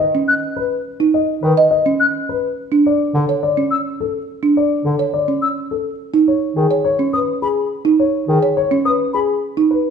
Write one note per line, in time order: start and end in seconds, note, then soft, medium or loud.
0.00 0.18 D#5 medium
0.15 0.33 C#4 soft
0.28 0.34 F#6 medium
0.57 0.75 B4 medium
1.00 1.18 D#4 medium
1.14 1.32 D#5 medium
1.43 1.54 D#3 medium
1.43 1.61 B4 medium
1.57 1.75 D#5 medium
1.71 1.89 D#5 medium
1.86 2.04 C#4 medium
2.00 2.06 F#6 medium
2.29 2.47 B4 medium
2.72 2.90 D4 medium
2.86 3.04 D5 medium
3.14 3.25 D3 medium
3.14 3.33 A4 medium
3.29 3.47 C#5 soft
3.43 3.61 D5 medium
3.57 3.75 C#4 soft
3.71 3.77 E6 soft
4.00 4.18 A4 soft
4.43 4.61 D4 soft
4.57 4.75 D5 medium
4.85 4.96 D3 soft
4.85 5.04 A4 medium
4.99 5.18 C#5 soft
5.14 5.32 D5 medium
5.28 5.47 C#4 soft
5.42 5.48 E6 soft
5.71 5.90 A4 soft
6.14 6.32 D#4 medium
6.28 6.47 C#5 soft
6.56 6.67 D#3 soft
6.56 6.75 G#4 medium
6.71 6.89 C#5 soft
6.85 7.04 C#5 medium
6.99 7.18 C#4 medium
7.13 7.32 B4 medium
7.13 7.19 D#6 soft
7.42 7.61 G#4 soft
7.42 7.48 B5 medium
7.85 8.04 D#4 medium
8.00 8.18 C#5 medium
8.28 8.39 D#3 medium
8.28 8.47 G#4 medium
8.43 8.61 C#5 soft
8.57 8.75 C#5 medium
8.71 8.90 C#4 medium
8.85 9.04 B4 medium
8.85 8.91 D#6 medium
9.13 9.33 G#4 medium
9.13 9.19 B5 medium
9.57 9.75 D#4 medium
9.71 9.89 B4 medium